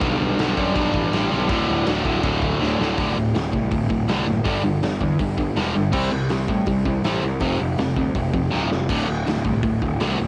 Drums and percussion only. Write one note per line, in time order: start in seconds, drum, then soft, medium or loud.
0.01 kick loud
0.01 crash medium
0.39 snare loud
0.39 crash medium
0.57 kick medium
0.76 kick loud
0.76 crash medium
0.94 kick medium
1.13 snare loud
1.13 crash medium
1.49 kick loud
1.49 crash medium
1.87 snare loud
1.87 crash medium
2.05 kick medium
2.23 kick loud
2.23 crash medium
2.42 kick medium
2.62 snare medium
2.81 snare loud
2.98 kick loud
2.98 open hi-hat medium
3.35 snare loud
3.35 open hi-hat medium
3.53 kick medium
3.71 kick loud
3.71 open hi-hat medium
3.90 kick medium
4.08 snare loud
4.08 open hi-hat medium
4.46 kick loud
4.46 open hi-hat medium
4.83 snare loud
4.83 open hi-hat medium
5.01 kick medium
5.19 kick loud
5.19 open hi-hat medium
5.38 kick medium
5.56 snare loud
5.56 open hi-hat medium
5.93 kick loud
5.93 crash loud
6.29 snare loud
6.29 open hi-hat medium
6.48 kick medium
6.66 kick loud
6.66 open hi-hat medium
6.85 kick medium
7.04 snare loud
7.04 open hi-hat medium
7.40 kick loud
7.40 open hi-hat medium
7.78 snare loud
7.78 open hi-hat medium
7.97 kick medium
8.15 kick loud
8.15 open hi-hat medium
8.34 kick medium
8.54 snare medium
8.72 snare medium
8.89 kick loud
8.89 crash loud
9.27 snare loud
9.27 open hi-hat medium
9.45 kick medium
9.63 kick loud
9.63 open hi-hat medium
9.82 kick medium
10.00 snare loud
10.00 open hi-hat medium